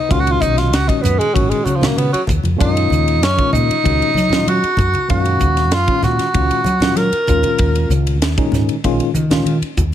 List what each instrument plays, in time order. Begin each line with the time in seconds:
Already playing: tenor saxophone D#4
0.09 fretless electric bass C#2, tine electric piano A#2 D#3 G#3 C#4 F#4, tenor saxophone F4, kick, ride
0.20 tenor saxophone F#4
0.27 ride
0.31 tenor saxophone F4
0.40 fretless electric bass B1, tenor saxophone D#4, kick, hi-hat pedal, high conga
0.58 tenor saxophone F4, snare, ride
0.72 fretless electric bass C#2, tenor saxophone F#4, snare, ride
0.86 tine electric piano A#2 D#3 G#3 C#4 F#4, tenor saxophone D#4, kick, ride
1.02 fretless electric bass F#2, tenor saxophone B3, hi-hat pedal, high conga, low conga
1.19 tenor saxophone G#3, muted fretless electric bass stroke, ride
1.34 fretless electric bass G#1, tine electric piano A#2 D#3 G#3 C#4 F#4, tenor saxophone F#3, kick, ride
1.50 tenor saxophone G#3, ride
1.64 fretless electric bass C#3, tenor saxophone F#3, tine electric piano G#4, hi-hat pedal, high conga
1.76 tenor saxophone F3
1.80 tine electric piano A#2 D#3 G#3 C#4 F#4, snare, ride, low conga
1.86 tenor saxophone A#3
1.97 fretless electric bass C#3, tenor saxophone B3, ride
2.12 tenor saxophone F#3, tine electric piano C#4 F4, muted fretless electric bass stroke, ride
2.27 fretless electric bass D#2, kick, hi-hat pedal, high conga, low conga
2.43 fretless electric bass F2, ride, high conga
2.57 fretless electric bass F#2, tine electric piano A#2 D#3 G#3 C#4 F4, tenor saxophone D#4, kick
2.61 ride
2.77 ride
2.90 fretless electric bass D#2, hi-hat pedal, high conga
3.08 ride
3.22 fretless electric bass F#2, tenor saxophone C#4, snare, ride
3.36 tine electric piano A#2 D#3 G#3 C#4 F4, kick, ride
3.53 fretless electric bass A#2, tenor saxophone D#4, hi-hat pedal, high conga, low conga
3.70 muted fretless electric bass stroke, ride
3.83 fretless electric bass C#2, tine electric piano A#2 D#3 G#3 C#4 F#4, kick, ride
4.02 ride
4.14 fretless electric bass F#3, tine electric piano F4, snare, hi-hat pedal, high conga
4.29 tine electric piano A#2 D#3 G#3 C#4 F4, snare, ride, low conga
4.47 fretless electric bass F#3, tenor saxophone F#4, ride
4.63 tine electric piano G#4, muted fretless electric bass stroke, ride
4.77 fretless electric bass F#2, kick, hi-hat pedal, high conga, low conga
4.94 ride, high conga
5.08 fretless electric bass F#2, tine electric piano A#2 D#3 G#3 C#4 F5, tenor saxophone F#4, kick, ride
5.25 ride
5.40 fretless electric bass D#2, kick, hi-hat pedal, high conga
5.57 snare, ride
5.71 fretless electric bass F#2, tenor saxophone F4, snare, ride
5.87 tine electric piano A#2 D#3 G#3 C#4 F4, kick, ride
6.03 fretless electric bass A#2, tenor saxophone F#4, snare, hi-hat pedal, high conga, low conga
6.18 muted fretless electric bass stroke, snare, ride
6.33 fretless electric bass C#2, tine electric piano A#2 D#3 G#3 C#4 F4, kick, ride
6.51 ride
6.64 fretless electric bass F#3, hi-hat pedal, high conga
6.80 tine electric piano A#2 D#3 G#3 C#4 F4, snare, ride, low conga
6.96 fretless electric bass F#3, tenor saxophone A#4, snare, ride
7.12 tine electric piano F4, muted fretless electric bass stroke, ride
7.27 fretless electric bass D#2, tine electric piano A#2 D#3 G#3 C#4 F4, kick, hi-hat pedal, low conga
7.43 ride, high conga
7.58 fretless electric bass D#2, kick, ride
7.75 ride
7.89 fretless electric bass C#2, hi-hat pedal, high conga
8.07 ride
8.20 fretless electric bass D#2, snare, ride
8.37 tine electric piano A#2 D#3 G#3 C#4 D#4, kick, ride
8.51 fretless electric bass G#2, snare, hi-hat pedal, high conga, low conga
8.67 muted fretless electric bass stroke, ride
8.84 fretless electric bass A#1, tine electric piano A#2 D#3 G#3 C#4 F4, kick, ride
9.00 ride
9.14 fretless electric bass D#3, tine electric piano F4, hi-hat pedal, high conga
9.30 tine electric piano A#2 D#3 G#3 C#4 F4, snare, ride, low conga
9.45 fretless electric bass D#3, ride
9.61 tine electric piano C#4 D#4, muted fretless electric bass stroke, ride
9.77 fretless electric bass D#2, kick, hi-hat pedal, high conga, low conga